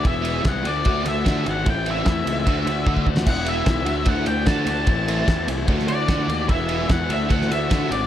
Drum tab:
CC |----------------|----------------|x---------------|----------------|
RD |x-x-x-x-x-x-x-x-|x-x-x-x-x-x-----|--x-x-x-x-x-x-x-|x-x-x-x-x-x-x-x-|
SD |----o-------o---|----o----------o|----o-------o---|----o----o--o---|
BD |o---o---o---o---|o---o---o---ooo-|o---o---o---o---|o---o---o---o---|

CC |----------------|
RD |x-x-x-x-x-x-x-x-|
SD |----o----o--o---|
BD |o---o---o---o---|